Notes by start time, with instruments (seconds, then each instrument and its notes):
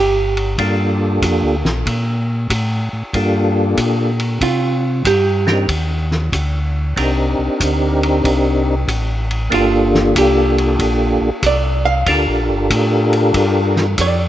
Already playing: tonewheel organ G1, hollow-body jazz guitar G4
0.37 ride
0.58 tonewheel organ G2 A#3 D4 F4 G4 A4, kick, ride
1.22 tonewheel organ F2, kick, hi-hat pedal, ride
1.42 tonewheel organ D2
1.64 tonewheel organ A#1, snare
1.86 tonewheel organ A#2, kick, ride
2.50 tonewheel organ A2, kick, hi-hat pedal, ride
2.93 tonewheel organ A2
3.13 tonewheel organ G2 A#3 D4 F4 G4 A4, kick, ride
3.77 tonewheel organ A#2, kick, hi-hat pedal, ride
4.20 ride
4.41 tonewheel organ C3, hollow-body jazz guitar F4, kick, ride
5.05 tonewheel organ G2, hollow-body jazz guitar G4, kick, hi-hat pedal, ride
5.47 tonewheel organ C4 D4 D#4 G4 A#4, snare
5.68 tonewheel organ D#2, kick, ride
6.11 snare
6.32 tonewheel organ D2, kick, hi-hat pedal, ride
6.96 tonewheel organ C2 C4 D4 D#4 G4 A#4, kick, ride
7.39 tonewheel organ C2
7.60 tonewheel organ D2, kick, hi-hat pedal, ride
8.03 ride
8.24 tonewheel organ C2, kick, ride
8.88 tonewheel organ A1, kick, hi-hat pedal, ride
9.31 ride
9.50 tonewheel organ G1 A#3 D4 F4 G4 A4, kick, ride
9.54 hollow-body jazz guitar F4
9.94 snare
10.15 tonewheel organ C2, hollow-body jazz guitar G4, kick, hi-hat pedal, ride
10.58 ride
10.79 tonewheel organ A#1, kick, ride
11.20 tonewheel organ A#1
11.42 tonewheel organ C2, kick, hi-hat pedal, ride
11.47 hollow-body jazz guitar D5
11.85 hollow-body jazz guitar F5
12.06 tonewheel organ D2 D4 F4 G4 A4 A#4, kick, ride
12.27 tonewheel organ A#1
12.49 tonewheel organ G1
12.70 tonewheel organ A2, kick, hi-hat pedal, ride
13.13 ride
13.34 tonewheel organ G2, kick, ride
13.76 snare
13.98 tonewheel organ F2, hollow-body jazz guitar D5, kick, hi-hat pedal, ride